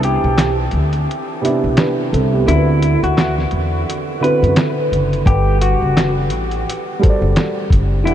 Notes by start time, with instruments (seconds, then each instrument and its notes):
Already playing: upright bass C2, upright piano B3 C4 D4 E4
0.03 clean electric guitar G4, closed hi-hat
0.24 upright bass B1
0.38 snare, clap, closed hi-hat
0.71 upright bass D2, closed hi-hat
0.93 closed hi-hat
1.11 closed hi-hat
1.42 upright piano C3 B3 D4 E4, closed hi-hat
1.64 upright bass B1
1.77 upright piano D4 B4, snare, clap, closed hi-hat
2.12 upright bass C2, upright piano C4 A4, closed hi-hat
2.33 upright piano B3 G4
2.46 upright bass D2, upright piano D3 C4 E4 F#4 A#4, clean electric guitar E4, closed hi-hat
2.56 upright piano B4
2.83 closed hi-hat
3.03 upright bass D2, clean electric guitar F#4, closed hi-hat
3.18 snare, clap, closed hi-hat
3.38 snare
3.51 upright bass E2, closed hi-hat
3.90 closed hi-hat
4.21 upright piano D3 C4 E4 F#4 B4, clean electric guitar B4, closed hi-hat
4.43 upright bass F#2, closed hi-hat
4.56 snare, clap, closed hi-hat
4.92 upright bass F#1, closed hi-hat
5.13 closed hi-hat
5.26 upright bass G1, upright piano G3 A4 B4 F#5, clean electric guitar G4, kick, closed hi-hat
5.62 clean electric guitar F#4, closed hi-hat
5.82 upright bass F#1
5.97 snare, clap, closed hi-hat
6.30 upright bass A1, closed hi-hat
6.51 closed hi-hat
6.69 closed hi-hat
6.99 upright piano G3 F#4 A4 C5
7.03 kick, closed hi-hat
7.09 upright piano D5
7.22 upright bass F#1
7.36 snare, clap, closed hi-hat
7.70 upright bass F#1, kick, closed hi-hat
8.04 upright bass E1, upright piano E3 D4 G4 F#5, clean electric guitar E4, closed hi-hat